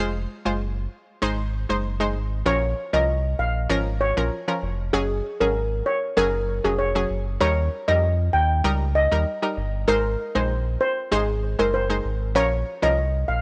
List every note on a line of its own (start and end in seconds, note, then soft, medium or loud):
0.00 0.27 F1 loud
0.00 0.42 G#3 medium
0.00 0.42 F4 medium
0.00 0.42 C5 loud
0.45 0.87 F#1 medium
0.45 0.64 G#3 medium
0.45 0.64 F4 medium
0.45 0.64 C5 medium
1.22 1.65 G#1 loud
1.22 1.42 G#3 medium
1.22 1.42 D#4 medium
1.22 1.42 C5 loud
1.69 2.16 F#1 medium
1.69 1.88 G#3 medium
1.69 1.88 D#4 medium
1.69 1.88 C5 medium
2.00 2.19 G#3 medium
2.00 2.19 D#4 medium
2.00 2.19 C5 medium
2.15 2.43 G#1 medium
2.46 2.74 A#1 loud
2.46 2.89 F3 medium
2.46 2.89 C#4 medium
2.46 2.89 A#4 loud
2.46 2.56 C#5 medium
2.93 3.35 C2 medium
2.93 3.11 F3 medium
2.93 3.12 C#4 medium
2.93 3.12 A#4 medium
2.93 3.02 D#5 medium
3.39 3.67 A#1 medium
3.39 3.49 F5 medium
3.70 4.13 G#1 loud
3.70 3.89 F3 loud
3.70 3.89 C#4 medium
3.70 3.90 A#4 loud
4.01 4.10 C#5 medium
4.17 4.30 A#1 medium
4.17 4.35 F3 medium
4.17 4.35 C#4 medium
4.17 4.36 A#4 medium
4.48 4.66 F3 medium
4.48 4.66 C#4 medium
4.48 4.66 A#4 medium
4.62 4.91 F1 loud
4.93 5.22 F#1 loud
4.93 5.37 F#3 medium
4.93 5.37 C#4 medium
4.93 5.03 G#4 loud
4.93 5.37 G#4 loud
5.40 5.82 G#1 medium
5.40 5.59 F#3 medium
5.40 5.59 C#4 medium
5.40 5.59 G#4 medium
5.40 5.49 A#4 medium
5.86 5.96 C#5 medium
6.17 6.60 F#1 loud
6.17 6.37 F#3 medium
6.17 6.37 C#4 medium
6.17 6.37 G#4 loud
6.17 6.27 A#4 medium
6.64 7.06 F1 loud
6.64 6.83 F#3 medium
6.64 6.83 C#4 medium
6.64 6.73 G#4 medium
6.64 6.83 G#4 medium
6.79 7.23 C#5 medium
6.95 7.14 F#3 medium
6.95 7.14 C#4 medium
6.95 7.14 G#4 medium
7.10 7.38 F#1 medium
7.40 7.69 D#2 loud
7.40 7.84 G3 medium
7.40 7.84 D#4 medium
7.40 7.84 A#4 loud
7.40 7.51 C#5 medium
7.88 8.30 F2 medium
7.88 8.06 G3 medium
7.88 8.06 D#4 medium
7.88 8.07 A#4 medium
7.88 7.97 D#5 medium
8.33 8.62 D#2 loud
8.33 8.43 G5 medium
8.64 9.08 C#2 loud
8.64 8.84 G3 medium
8.64 8.84 D#4 medium
8.64 8.84 A#4 loud
8.95 9.05 D#5 medium
9.11 9.25 D#2 loud
9.11 9.30 G3 medium
9.11 9.30 D#4 medium
9.11 9.30 A#4 medium
9.42 9.61 G3 medium
9.42 9.61 D#4 medium
9.42 9.61 A#4 medium
9.57 9.85 G1 medium
9.88 10.16 G#1 loud
9.88 10.31 G#3 medium
9.88 10.31 D#4 medium
9.88 9.98 A#4 loud
9.88 10.32 C5 loud
10.35 10.77 A#1 medium
10.35 10.54 G#3 medium
10.35 10.54 D#4 medium
10.35 10.44 C5 medium
10.35 10.54 C5 medium
10.81 10.91 C5 medium
11.12 11.55 G#1 loud
11.12 11.31 G#3 loud
11.12 11.32 D#4 medium
11.12 11.22 G#4 medium
11.12 11.32 C5 loud
11.59 12.01 F#1 medium
11.59 11.77 G#3 medium
11.59 11.77 D#4 medium
11.59 11.68 A#4 medium
11.59 11.78 C5 medium
11.74 12.18 C5 medium
11.90 12.08 G#3 medium
11.90 12.08 D#4 medium
11.90 12.08 C5 medium
12.05 12.37 G#1 medium
12.35 12.64 A#1 loud
12.35 12.79 F3 loud
12.35 12.79 C#4 medium
12.35 12.79 A#4 loud
12.35 12.45 C#5 medium
12.82 13.25 C2 medium
12.82 13.01 F3 medium
12.82 13.01 C#4 medium
12.82 13.01 A#4 medium
12.82 12.92 D#5 medium
13.28 13.42 A#1 medium
13.28 13.38 F5 medium